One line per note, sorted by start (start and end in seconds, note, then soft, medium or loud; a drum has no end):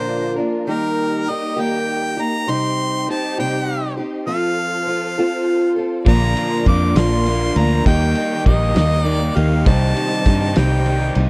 0.00 0.39 A#2 soft
0.00 0.38 D3 medium
0.00 0.38 F3 medium
0.00 0.37 A#3 medium
0.00 0.36 D4 medium
0.00 0.66 D4 medium
0.00 0.66 F4 medium
0.00 0.35 A#4 medium
0.00 0.66 A#4 medium
0.00 0.34 C5 medium
0.36 0.67 F3 soft
0.36 0.67 A#3 soft
0.36 0.67 D4 soft
0.36 0.67 A#4 medium
0.67 1.27 D#3 medium
0.67 1.27 G3 medium
0.67 1.27 A#3 medium
0.67 2.45 D#4 medium
0.67 1.29 D#4 medium
0.67 2.46 G4 medium
0.67 1.30 G4 medium
0.67 2.46 A#4 medium
0.67 1.31 A#4 medium
1.27 1.57 G3 medium
1.27 1.57 A#3 medium
1.27 1.56 D#4 medium
1.27 1.55 G4 medium
1.27 1.62 D#5 medium
1.57 2.18 D#3 medium
1.57 2.18 G3 medium
1.57 2.18 A#3 medium
1.57 2.17 D#4 medium
1.57 2.16 G4 medium
1.61 2.23 G5 medium
2.17 2.48 A#3 soft
2.17 2.47 D#4 soft
2.17 2.47 G4 medium
2.21 2.52 A#5 loud
2.47 3.07 C3 medium
2.47 3.06 G3 medium
2.47 3.08 C4 medium
2.47 4.26 D#4 medium
2.47 3.08 D#4 medium
2.47 4.26 G4 medium
2.47 3.08 G4 loud
2.47 4.25 C5 medium
2.47 3.09 C6 loud
3.08 3.37 G3 medium
3.08 3.38 C4 medium
3.08 3.37 D#4 medium
3.08 3.37 G4 medium
3.08 3.37 A5 medium
3.38 3.99 C3 medium
3.38 3.98 G3 medium
3.38 3.98 C4 medium
3.38 3.98 D#4 medium
3.38 3.96 G4 medium
3.38 3.94 G5 medium
3.97 4.26 C4 soft
3.97 4.28 D#4 soft
3.97 4.27 G4 medium
4.27 4.86 F3 medium
4.27 4.86 C4 medium
4.27 6.04 F4 medium
4.27 4.88 F4 medium
4.27 6.05 A4 medium
4.27 4.88 A4 medium
4.27 6.05 C5 medium
4.27 5.73 F5 loud
4.87 5.17 F3 medium
4.87 5.17 C4 medium
4.87 5.17 F4 medium
4.87 5.17 A4 medium
5.18 5.78 F3 medium
5.18 5.78 C4 medium
5.18 5.77 F4 medium
5.18 5.75 A4 medium
5.76 6.07 C4 soft
5.76 6.07 F4 soft
5.76 6.07 A4 medium
6.05 6.34 A#1 loud
6.05 6.66 A#2 medium
6.05 6.67 D3 medium
6.05 6.65 F3 medium
6.05 6.67 A#3 medium
6.05 6.67 D4 medium
6.05 7.82 F4 medium
6.05 7.84 F4 medium
6.05 6.34 F4 loud
6.05 7.82 A#4 medium
6.05 7.84 A#4 medium
6.05 6.68 A#4 medium
6.05 7.84 D5 medium
6.05 7.83 D5 medium
6.05 6.63 A#5 loud
6.05 kick loud
6.05 crash medium
6.36 6.67 A#3 medium
6.36 6.67 D4 medium
6.36 6.68 F4 medium
6.36 ride medium
6.66 6.93 F2 loud
6.66 6.96 F3 medium
6.66 6.96 A#3 medium
6.66 6.95 D4 medium
6.66 6.95 F4 medium
6.66 6.95 A#4 medium
6.66 6.98 D6 loud
6.66 kick medium
6.66 ride medium
6.96 7.50 A#1 medium
6.96 7.58 A#2 medium
6.96 7.57 D3 medium
6.96 7.57 F3 medium
6.96 7.57 A#3 medium
6.96 7.56 D4 medium
6.96 7.28 F4 medium
6.96 7.55 A#4 medium
6.96 7.59 C6 loud
6.96 snare loud
6.96 ride loud
7.26 7.85 F3 medium
7.26 7.58 A#3 medium
7.26 7.57 D4 medium
7.26 7.55 F4 medium
7.26 ride medium
7.56 7.83 D2 medium
7.56 7.87 F3 soft
7.56 7.86 A#3 soft
7.56 7.87 D4 soft
7.56 7.85 F4 medium
7.56 7.87 A#4 medium
7.56 7.86 A#5 loud
7.56 ride medium
7.85 8.13 D#2 loud
7.85 8.46 D#3 medium
7.85 8.45 G3 medium
7.85 8.45 A#3 medium
7.85 8.48 D#4 medium
7.85 9.62 G4 medium
7.85 9.65 G4 medium
7.85 8.48 G4 medium
7.85 9.62 A#4 medium
7.85 9.64 A#4 medium
7.85 9.63 D#5 medium
7.85 9.65 D#5 medium
7.85 8.42 G5 loud
7.85 kick loud
7.85 ride medium
8.15 8.45 A#3 medium
8.15 8.47 D#4 medium
8.15 8.48 G4 medium
8.15 ride medium
8.45 8.73 A#1 loud
8.45 9.03 D#3 medium
8.45 8.75 G3 medium
8.45 8.75 A#3 medium
8.45 8.74 D#4 medium
8.45 8.74 G4 medium
8.45 9.04 D#5 loud
8.45 kick medium
8.45 ride medium
8.75 9.30 D#2 medium
8.75 9.37 D#3 medium
8.75 9.66 G3 medium
8.75 9.36 A#3 medium
8.75 9.37 D#4 medium
8.75 9.35 G4 medium
8.75 snare loud
8.75 ride medium
9.04 9.63 D#3 medium
9.04 9.37 A#3 medium
9.04 9.36 D#4 medium
9.04 9.34 G4 medium
9.04 9.38 D5 loud
9.04 ride medium
9.36 9.63 D#2 medium
9.36 9.67 A#3 soft
9.36 9.67 D#4 soft
9.36 9.66 G4 medium
9.36 9.66 F5 medium
9.36 ride medium
9.65 9.93 C2 medium
9.65 10.26 C3 medium
9.65 10.24 D#3 medium
9.65 10.26 G3 medium
9.65 10.27 C4 medium
9.65 10.28 D#4 medium
9.65 11.30 G4 medium
9.65 10.28 G4 medium
9.65 11.30 C5 medium
9.65 11.30 D#5 medium
9.65 10.58 A5 loud
9.65 kick loud
9.65 ride loud
9.95 10.26 G3 medium
9.95 10.27 D#4 medium
9.95 10.28 G4 medium
9.95 ride medium
10.25 10.53 G2 loud
10.25 10.84 D#3 medium
10.25 10.56 G3 medium
10.25 10.57 C4 medium
10.25 10.56 D#4 medium
10.25 10.56 G4 medium
10.25 kick medium
10.25 ride medium
10.56 11.10 C2 medium
10.56 11.17 C3 medium
10.56 11.30 G3 medium
10.56 11.19 C4 medium
10.56 11.17 D#4 medium
10.56 11.16 G4 medium
10.56 11.16 G5 medium
10.56 snare loud
10.56 ride medium
10.86 11.30 D#3 medium
10.86 11.19 G3 medium
10.86 11.17 D#4 medium
10.86 11.15 G4 medium
10.86 ride medium
11.15 11.30 C2 medium
11.15 11.30 G3 medium
11.15 11.30 C4 soft
11.15 11.30 D#4 soft
11.15 11.30 G4 medium
11.15 ride medium